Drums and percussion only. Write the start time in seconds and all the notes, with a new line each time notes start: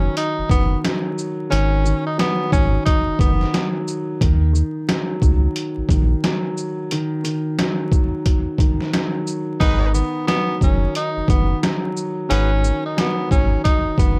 0.17 closed hi-hat
0.49 kick, closed hi-hat, shaker
0.85 snare, closed hi-hat
1.18 shaker
1.52 closed hi-hat
1.86 shaker
2.19 snare, closed hi-hat
2.52 kick, shaker
2.86 kick, closed hi-hat
3.19 kick, closed hi-hat, shaker
3.41 snare
3.54 snare, closed hi-hat
3.88 shaker
4.21 kick, closed hi-hat
4.55 shaker
4.89 snare, closed hi-hat
5.22 kick, shaker
5.56 closed hi-hat
5.89 kick, closed hi-hat, shaker
6.24 snare, closed hi-hat
6.57 shaker
6.91 closed hi-hat
7.25 closed hi-hat, shaker
7.59 snare, closed hi-hat
7.92 kick, shaker
8.26 kick, closed hi-hat
8.58 kick, closed hi-hat, shaker
8.81 snare
8.94 snare, closed hi-hat
9.27 shaker
9.60 kick, closed hi-hat
9.94 shaker
10.28 snare, closed hi-hat
10.61 kick, shaker
10.95 closed hi-hat
11.28 kick, closed hi-hat, shaker
11.63 snare, closed hi-hat
11.97 shaker
12.31 closed hi-hat
12.64 shaker
12.98 snare, closed hi-hat
13.31 kick, shaker
13.65 kick, closed hi-hat
13.98 kick, closed hi-hat, shaker